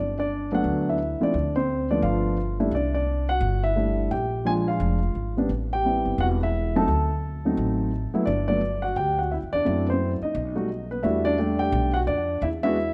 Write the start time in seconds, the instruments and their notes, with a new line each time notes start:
Already playing: upright bass G1, grand piano D4 D5
0.19 grand piano D4 D5
0.52 grand piano F#3 A3 B3 D4 F#4 F#5
0.64 upright bass D2
0.89 grand piano E4 E5
1.21 grand piano F3 A3 C4 D4 E4 D5, muted upright bass stroke
1.34 upright bass D2
1.56 grand piano C4 C5
1.91 grand piano F3 A3 B3 D4 D5
2.02 upright bass G1, grand piano F4 F5
2.60 grand piano G3 A3 D4 E4
2.71 upright bass C2, grand piano D5
2.76 grand piano D4
2.94 grand piano D4 D5
3.29 grand piano F#4 F#5
3.41 upright bass G1
3.63 grand piano E4 E5
3.76 grand piano G3 A3 D4 E4
4.11 upright bass A#1, grand piano G4 G5
4.45 grand piano F3 G#3 D4 F4 G#4 G#5
4.68 grand piano F4 F5
4.80 upright bass F1
5.15 upright bass G#1
5.37 grand piano G3 B3 C4 D4
5.49 upright bass A1
5.73 grand piano G4 G5
5.84 grand piano G3 B3 C4 E4
6.05 upright bass G1
6.18 upright bass E1, grand piano F#4 F#5
6.43 grand piano E4 E5
6.76 grand piano F#3 A3 C4 D#4 A4 A5
6.88 upright bass D2
7.45 grand piano F#3 A3 C4 D#4
7.57 upright bass A1
8.13 grand piano F#3 A3 B3 E4, muted upright bass stroke
8.26 upright bass G1, grand piano D4 D5
8.48 grand piano F#3 A3 B3 D4 D5
8.82 grand piano F#4 F#5
8.96 upright bass D2, grand piano G4 G5
9.18 grand piano F#4 F#5
9.31 grand piano E4 E5
9.43 upright bass F#2
9.53 upright bass E2, grand piano D4 D5
9.65 upright bass F#2, grand piano F#3 A3 C4 E4
9.87 grand piano B4 C5
9.93 grand piano C4
10.21 grand piano D#4 D#5, muted upright bass stroke
10.35 upright bass B1
10.55 grand piano G3 A3 D#4 F#4
10.91 grand piano B3 B4
11.03 upright bass E2, grand piano G3 A3 D4 E4 F#4 E5
11.25 grand piano D4 D5
11.39 grand piano G3 A3 D4 G4
11.59 grand piano G4 G5
11.72 upright bass B1
11.94 grand piano F#4 F#5
12.07 upright bass F2, grand piano D4 D5
12.42 upright bass E2, grand piano E4 E5
12.63 grand piano G#3 B3 D4 E4 F#4 E5